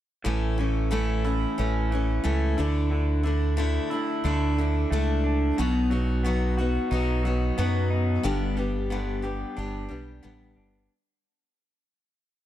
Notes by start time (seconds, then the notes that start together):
0.24 A1 A2 E3 A3 C#4 E4
0.58 E3 A3 C#4 E4
0.91 A2 E3 A3 C#4 E4
1.24 A3 C#4 E4
1.58 A1 E3 A3 C#4 E4
1.91 E3 A3 C#4 E4
2.24 C#2 A2 E3 A3 C#4 E4
2.58 D2 D3 A3 D4 E4
2.91 D3
3.23 D3 A3 D4 E4
3.57 D3 A3 D4 E4
3.91 A3 D4 E4
4.24 D2 D3 A3 D4 E4
4.58 D3 A3 D4 E4
4.91 C#2 A3 D4 E4
5.24 D4
5.58 B1 B2 F#3 B3 D#4 F#4
5.90 F#3 B3 D#4 F#4
6.24 B2 F#3 B3 D#4 F#4
6.58 B3 D#4 F#4
6.91 B1 F#3 B3 D#4 F#4
7.23 F#3 D#4 F#4
7.27 B3
7.58 F#2 B2 F#3 B3 D#4 F#4
7.90 D#4
8.23 G1 G2 D3 G3 B3 D4 G4
8.57 G3 B3 D4 G4
8.90 G2 D3 G3 B3 D4 G4
9.22 G3 B3 D4 G4
9.57 G1 G3 B3 D4 G4
9.89 B1 G3 B3 D4 G4
10.23 A1 G2 D3 G3 B3 D4 G4
10.56 G1 D4